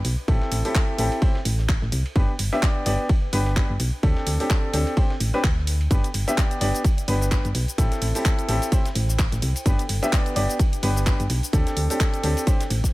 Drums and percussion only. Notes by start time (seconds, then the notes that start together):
0.05 open hi-hat, ride
0.28 kick, ride
0.42 snare
0.52 open hi-hat, ride
0.65 snare, open hi-hat
0.75 kick, snare, clap, ride
0.98 open hi-hat, ride
1.12 ride
1.22 kick, ride
1.35 snare
1.45 open hi-hat, ride
1.59 snare
1.69 kick, snare, clap, ride
1.82 snare
1.92 open hi-hat, ride
2.06 ride
2.16 kick, ride
2.39 open hi-hat, ride
2.53 snare
2.62 kick, snare, clap, ride
2.86 open hi-hat, ride
3.09 kick, ride
3.33 open hi-hat, ride
3.46 snare
3.56 kick, snare, clap, ride
3.80 open hi-hat, ride
4.03 kick, ride
4.17 snare
4.27 open hi-hat, ride
4.40 snare, open hi-hat
4.50 kick, snare, clap, ride
4.74 open hi-hat, ride
4.87 ride
4.97 kick, ride
5.10 snare
5.20 open hi-hat, ride
5.34 snare
5.44 kick, snare, clap, ride
5.57 snare
5.67 open hi-hat, ride
5.81 ride
5.91 kick, closed hi-hat, ride, cabasa
6.04 closed hi-hat, cabasa
6.14 open hi-hat, ride
6.28 snare, closed hi-hat, cabasa
6.38 kick, snare, clap, closed hi-hat, ride, cabasa
6.51 closed hi-hat, cabasa
6.61 open hi-hat, ride
6.75 closed hi-hat, cabasa
6.84 kick, closed hi-hat, ride, cabasa
6.98 closed hi-hat, cabasa
7.08 open hi-hat, ride
7.21 snare, cabasa
7.31 kick, snare, clap, closed hi-hat, ride, cabasa
7.45 closed hi-hat, cabasa
7.55 open hi-hat, ride
7.68 closed hi-hat, cabasa
7.78 kick, closed hi-hat, ride, cabasa
7.92 snare, closed hi-hat, cabasa
8.02 open hi-hat, ride
8.15 snare, open hi-hat, cabasa
8.25 kick, snare, clap, closed hi-hat, ride, cabasa
8.39 closed hi-hat, cabasa
8.49 open hi-hat, ride
8.62 closed hi-hat, ride, cabasa
8.72 kick, closed hi-hat, ride, cabasa
8.85 snare, closed hi-hat, cabasa
8.95 open hi-hat, ride
9.09 snare, cabasa
9.19 kick, snare, clap, closed hi-hat, ride, cabasa
9.32 snare, closed hi-hat, cabasa
9.42 open hi-hat, ride
9.56 closed hi-hat, ride, cabasa
9.66 kick, closed hi-hat, ride, cabasa
9.79 closed hi-hat, cabasa
9.89 open hi-hat, ride
10.03 snare, closed hi-hat, cabasa
10.13 kick, snare, clap, closed hi-hat, ride, cabasa
10.26 closed hi-hat, cabasa
10.36 open hi-hat, ride
10.50 closed hi-hat, cabasa
10.59 kick, closed hi-hat, ride, cabasa
10.73 closed hi-hat, cabasa
10.83 open hi-hat, ride
10.96 snare, cabasa
11.06 kick, snare, clap, closed hi-hat, ride, cabasa
11.20 closed hi-hat, cabasa
11.30 open hi-hat, ride
11.43 closed hi-hat, cabasa
11.53 kick, closed hi-hat, ride, cabasa
11.67 snare, closed hi-hat, cabasa
11.77 open hi-hat
11.90 open hi-hat, cabasa
12.00 kick, snare, clap, closed hi-hat, ride, cabasa
12.14 closed hi-hat, cabasa
12.24 open hi-hat, ride
12.37 closed hi-hat, ride, cabasa
12.47 kick, closed hi-hat, ride, cabasa
12.60 snare, closed hi-hat, cabasa
12.70 open hi-hat, ride
12.84 kick, snare, closed hi-hat, cabasa